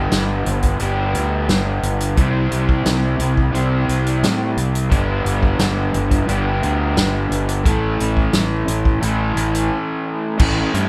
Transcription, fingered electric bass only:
Already playing: G1
0.12 G1
0.47 G1
0.81 G1
1.14 D2
1.48 G1
1.83 G1
2.17 C2
2.52 C2
2.86 C2
3.19 C2
3.54 C2
3.88 C2
4.23 A2
4.57 C2
4.91 G1
5.25 G1
5.59 G1
5.95 G1
6.28 G1
6.63 D2
6.96 G1
7.30 G1
7.66 A1
8.01 A1
8.34 A1
8.68 A1
9.02 A1
9.36 A1
10.40 A1
10.74 G2

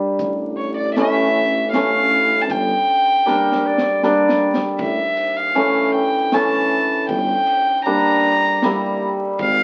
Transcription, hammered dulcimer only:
Already playing: G3
0.97 E3 A3 C#4
1.74 E3 A3 C#4
3.26 G3 A#3 D4
4.03 G3 A#3 D4
5.55 E3 A3 C#4
6.33 E3 A3 C#4
7.86 G3 A#3 D4
8.64 G3 A#3 E4

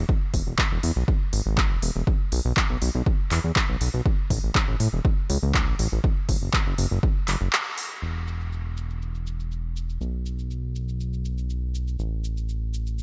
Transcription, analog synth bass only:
0.34 E1
0.47 E1
0.71 E1
0.83 E2
0.96 B1
1.33 G#1
1.46 G#1
1.71 E1
1.82 E1
1.95 E1
2.32 B1
2.45 B1
2.70 B1
2.82 B1
2.95 B1
3.31 E2
3.44 E2
3.69 B1
3.81 B1
3.94 B1
4.30 A1
4.43 A1
4.68 A1
4.80 A2
4.93 E1
5.30 C#2
5.43 C#2
5.67 A1
5.79 A1
5.92 A1
6.29 F#1
6.42 F#1
6.67 F#1
6.78 F#1
6.91 F#1
7.28 F#1
7.41 F#1
8.02 E1
10.01 B1
11.99 A1

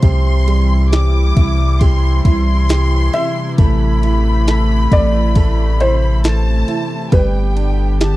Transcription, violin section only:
0.02 C6
0.91 D6
1.80 C6
2.25 C6
3.58 B5
6.24 A5
7.12 G5
8.00 A5

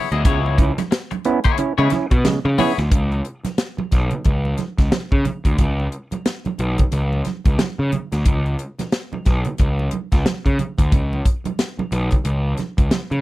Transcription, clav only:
0.26 C#3 G#3
0.59 C#4 E4
1.25 B3 C#4 E4
1.59 C#4 E4
1.79 C#3 G#3
1.92 C#4 E4
2.25 C#3 G#3
2.59 B3 C#4 E4
2.79 C#4 E4

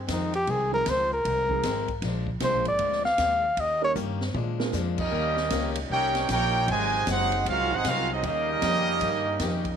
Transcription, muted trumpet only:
Already playing: C4
0.12 D#4
0.35 G4
0.50 G#4
0.74 A#4
0.89 C5
1.13 A#4
2.43 C5
2.68 D5
3.05 F5
3.60 D#5
3.84 C#5

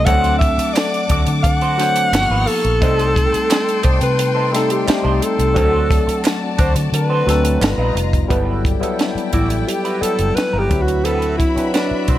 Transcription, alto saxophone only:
0.05 F#5
0.39 E5
0.74 D5
1.43 F#5
2.47 A4
3.84 C5
4.03 B4
4.54 A4
4.71 G4
5.23 A4
6.60 C5
6.94 B4
9.34 E4
9.68 G4
10.01 A4
10.35 B4
10.59 G4
10.82 F#4
11.05 A4
11.38 E4
11.73 D4

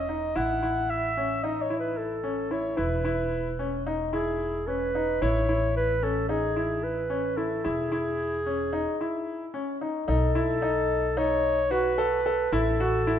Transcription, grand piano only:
0.09 D#4
0.35 E4
0.62 E4
1.17 C#4
1.44 D#4
1.70 E4
2.24 C#4
2.51 E4
2.77 E4
3.05 E4
3.59 C#4
3.86 D#4
4.13 E4
4.67 C#4
4.95 D#4
5.22 E4
5.49 E4
6.03 C#4
6.29 D#4
6.56 E4
7.10 C#4
7.37 E4
7.64 E4
7.92 E4
8.46 C#4
8.73 D#4
9.01 E4
9.54 C#4
9.81 D#4
10.08 D#4
10.35 E4
10.62 D#4
11.17 D#4
11.71 F#4
11.98 A4
12.26 A4
12.53 E4
12.80 F#4
13.07 E4

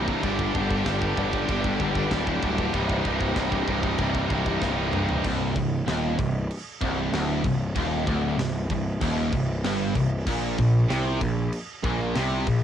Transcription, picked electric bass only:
Already playing: C1
0.23 G1
0.55 G1
0.85 G1
1.17 G1
1.49 G1
1.80 G1
2.11 D1
2.43 D1
2.74 C1
3.05 C1
3.36 C1
3.68 C1
3.99 C1
4.30 C1
4.62 C1
5.25 C1
5.56 C1
5.88 D#1
6.19 C1
6.81 C1
7.13 D1
7.44 C1
7.76 D#1
8.07 D1
8.39 C1
8.70 C1
9.01 D#1
9.32 C1
9.64 G1
9.96 C1
10.26 A#1
10.59 A#1
10.90 C2
11.21 A#1
11.83 A#1
12.16 C2
12.47 A#1

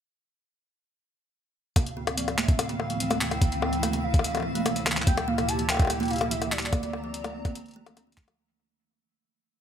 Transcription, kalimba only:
1.76 C3
1.97 D3
2.17 F3
2.38 A3
2.48 C3
2.69 D3
2.90 F3
3.10 A3
3.21 C3
3.42 D3
3.62 F3
3.83 A3
3.93 C3
4.14 D3
4.35 F3
4.55 A3
4.66 C3
4.86 D3
5.07 G3
5.28 A#3
5.38 C3
5.59 E3
5.79 G3
6.00 A#3
6.10 C3
6.31 E3
6.52 G3
6.73 A#3
6.83 D3
7.04 F3
7.24 A3
7.45 A#3
7.55 D3
7.76 A3
7.86 A#3
7.97 D4
8.07 D3
8.17 A3
8.28 F3

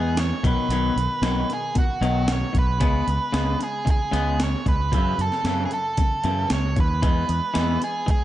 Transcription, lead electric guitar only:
Already playing: G#4
0.19 C#5
0.47 B4
1.53 G#4
1.78 F#4
2.32 C#5
2.59 B4
3.63 G#4
3.91 G#4
4.43 C#5
4.68 B4
5.21 A4
5.65 G#4
5.73 A4
6.53 C#5
6.80 B4
7.84 G#4
8.11 G#4

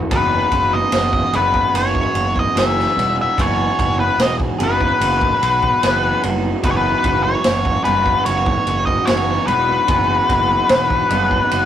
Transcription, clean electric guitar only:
Already playing: F#4
0.10 F#3 B3 D#4 G#4
1.33 F#3 B3 D#4 G#4
2.55 F#3 B3 D#4 G#4
3.37 F#3 B3 D#4 G#4
4.58 F#3 B3 D#4 G#4
5.81 F#3 B3 D#4 G#4
6.63 F#3 B3 D#4 G#4
7.84 F#3 B3 D#4 G#4
9.06 F#3 B3 D#4 G#4
9.86 F#3 B3 D#4 G#4
11.09 F#3 B3 D#4 G#4

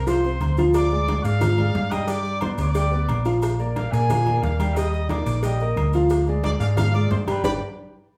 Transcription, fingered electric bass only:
Already playing: C2
0.40 D2
1.24 G#2
1.75 G2
2.58 D2
3.08 A#1
3.92 A#2
4.43 D#2
5.26 A#1
5.76 D2
6.60 G#2
7.11 G2
7.44 G1

